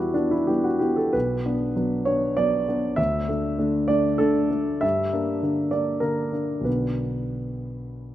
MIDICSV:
0, 0, Header, 1, 2, 480
1, 0, Start_track
1, 0, Key_signature, 2, "minor"
1, 0, Tempo, 643777
1, 850, Time_signature, 3, 2, 24, 8
1, 1315, Tempo, 609137
1, 4675, Tempo, 650759
1, 6240, End_track
2, 0, Start_track
2, 0, Title_t, "Grand piano"
2, 0, Program_c, 0, 0
2, 0, Control_c, 0, 64, 127
2, 0, Note_on_c, 0, 40, 29
2, 0, Note_on_c, 0, 55, 23
2, 0, Note_on_c, 0, 59, 22
2, 0, Note_on_c, 0, 64, 41
2, 0, Note_on_c, 0, 66, 45
2, 0, Note_on_c, 0, 67, 47
2, 85, Note_off_c, 0, 55, 0
2, 89, Note_off_c, 0, 59, 0
2, 101, Note_off_c, 0, 64, 0
2, 104, Note_on_c, 0, 62, 48
2, 112, Note_on_c, 0, 64, 25
2, 116, Note_on_c, 0, 59, 24
2, 220, Note_off_c, 0, 64, 0
2, 232, Note_on_c, 0, 64, 41
2, 234, Note_off_c, 0, 62, 0
2, 338, Note_off_c, 0, 59, 0
2, 352, Note_off_c, 0, 67, 0
2, 352, Note_on_c, 0, 67, 52
2, 358, Note_off_c, 0, 64, 0
2, 361, Note_on_c, 0, 59, 24
2, 364, Note_on_c, 0, 55, 25
2, 370, Note_on_c, 0, 64, 24
2, 477, Note_off_c, 0, 66, 0
2, 477, Note_on_c, 0, 66, 42
2, 480, Note_off_c, 0, 67, 0
2, 583, Note_off_c, 0, 59, 0
2, 585, Note_off_c, 0, 55, 0
2, 588, Note_off_c, 0, 64, 0
2, 591, Note_on_c, 0, 67, 49
2, 603, Note_on_c, 0, 59, 23
2, 604, Note_on_c, 0, 64, 25
2, 605, Note_off_c, 0, 66, 0
2, 718, Note_on_c, 0, 69, 47
2, 722, Note_off_c, 0, 67, 0
2, 822, Note_off_c, 0, 59, 0
2, 823, Note_off_c, 0, 64, 0
2, 841, Note_on_c, 0, 71, 54
2, 844, Note_off_c, 0, 69, 0
2, 848, Note_on_c, 0, 35, 34
2, 865, Control_c, 0, 64, 0
2, 869, Note_off_c, 0, 40, 0
2, 1011, Control_c, 0, 64, 127
2, 1077, Note_off_c, 0, 35, 0
2, 1086, Note_on_c, 0, 59, 28
2, 1087, Note_on_c, 0, 62, 29
2, 1293, Note_off_c, 0, 59, 0
2, 1293, Note_off_c, 0, 62, 0
2, 1312, Note_on_c, 0, 54, 27
2, 1316, Note_on_c, 0, 59, 26
2, 1317, Note_on_c, 0, 62, 29
2, 1529, Note_off_c, 0, 54, 0
2, 1531, Note_off_c, 0, 59, 0
2, 1532, Note_off_c, 0, 62, 0
2, 1544, Note_on_c, 0, 73, 57
2, 1550, Note_off_c, 0, 71, 0
2, 1557, Note_on_c, 0, 62, 28
2, 1558, Note_on_c, 0, 59, 27
2, 1771, Note_off_c, 0, 62, 0
2, 1772, Note_off_c, 0, 59, 0
2, 1788, Note_off_c, 0, 73, 0
2, 1789, Note_on_c, 0, 74, 60
2, 1796, Note_on_c, 0, 54, 27
2, 1799, Note_on_c, 0, 59, 30
2, 1806, Note_on_c, 0, 62, 31
2, 2010, Note_off_c, 0, 54, 0
2, 2011, Note_off_c, 0, 59, 0
2, 2015, Note_off_c, 0, 62, 0
2, 2039, Note_on_c, 0, 62, 31
2, 2040, Note_on_c, 0, 59, 30
2, 2251, Note_off_c, 0, 59, 0
2, 2251, Note_off_c, 0, 62, 0
2, 2260, Note_on_c, 0, 76, 64
2, 2269, Note_off_c, 0, 74, 0
2, 2270, Note_on_c, 0, 38, 36
2, 2287, Control_c, 0, 64, 0
2, 2428, Control_c, 0, 64, 127
2, 2505, Note_off_c, 0, 38, 0
2, 2515, Note_on_c, 0, 57, 31
2, 2517, Note_on_c, 0, 62, 33
2, 2731, Note_off_c, 0, 57, 0
2, 2732, Note_off_c, 0, 62, 0
2, 2749, Note_on_c, 0, 50, 29
2, 2752, Note_on_c, 0, 57, 29
2, 2754, Note_on_c, 0, 62, 34
2, 2966, Note_off_c, 0, 50, 0
2, 2967, Note_off_c, 0, 57, 0
2, 2968, Note_off_c, 0, 62, 0
2, 2980, Note_on_c, 0, 74, 59
2, 2987, Note_off_c, 0, 76, 0
2, 2988, Note_on_c, 0, 57, 31
2, 2997, Note_on_c, 0, 62, 31
2, 3206, Note_off_c, 0, 57, 0
2, 3210, Note_off_c, 0, 62, 0
2, 3220, Note_on_c, 0, 69, 64
2, 3226, Note_off_c, 0, 74, 0
2, 3232, Note_on_c, 0, 50, 30
2, 3232, Note_on_c, 0, 57, 32
2, 3239, Note_on_c, 0, 62, 33
2, 3458, Note_off_c, 0, 50, 0
2, 3458, Note_off_c, 0, 57, 0
2, 3461, Note_off_c, 0, 62, 0
2, 3475, Note_on_c, 0, 57, 28
2, 3479, Note_on_c, 0, 62, 31
2, 3705, Note_off_c, 0, 57, 0
2, 3708, Note_off_c, 0, 62, 0
2, 3714, Note_on_c, 0, 76, 66
2, 3727, Note_on_c, 0, 43, 37
2, 3729, Note_off_c, 0, 69, 0
2, 3746, Control_c, 0, 64, 0
2, 3876, Control_c, 0, 64, 127
2, 3959, Note_off_c, 0, 43, 0
2, 3967, Note_on_c, 0, 58, 29
2, 3967, Note_on_c, 0, 62, 32
2, 4176, Note_off_c, 0, 58, 0
2, 4176, Note_off_c, 0, 62, 0
2, 4199, Note_on_c, 0, 50, 28
2, 4202, Note_on_c, 0, 58, 29
2, 4206, Note_on_c, 0, 62, 30
2, 4411, Note_off_c, 0, 50, 0
2, 4413, Note_off_c, 0, 58, 0
2, 4415, Note_off_c, 0, 62, 0
2, 4425, Note_off_c, 0, 76, 0
2, 4425, Note_on_c, 0, 74, 48
2, 4432, Note_on_c, 0, 58, 28
2, 4437, Note_on_c, 0, 62, 29
2, 4650, Note_off_c, 0, 58, 0
2, 4652, Note_off_c, 0, 62, 0
2, 4656, Note_on_c, 0, 70, 53
2, 4667, Note_on_c, 0, 50, 28
2, 4667, Note_on_c, 0, 58, 27
2, 4671, Note_off_c, 0, 74, 0
2, 4673, Note_on_c, 0, 62, 32
2, 4878, Note_off_c, 0, 50, 0
2, 4878, Note_off_c, 0, 58, 0
2, 4881, Note_off_c, 0, 62, 0
2, 4894, Note_on_c, 0, 58, 24
2, 4896, Note_on_c, 0, 62, 27
2, 5104, Note_on_c, 0, 35, 29
2, 5113, Note_off_c, 0, 58, 0
2, 5114, Note_off_c, 0, 62, 0
2, 5117, Note_on_c, 0, 50, 21
2, 5123, Note_on_c, 0, 59, 21
2, 5131, Note_on_c, 0, 71, 43
2, 5132, Note_on_c, 0, 62, 23
2, 5134, Note_off_c, 0, 70, 0
2, 5158, Control_c, 0, 64, 0
2, 5281, Control_c, 0, 64, 127
2, 6240, Note_off_c, 0, 35, 0
2, 6240, Note_off_c, 0, 50, 0
2, 6240, Note_off_c, 0, 59, 0
2, 6240, Note_off_c, 0, 62, 0
2, 6240, Note_off_c, 0, 71, 0
2, 6240, End_track
0, 0, End_of_file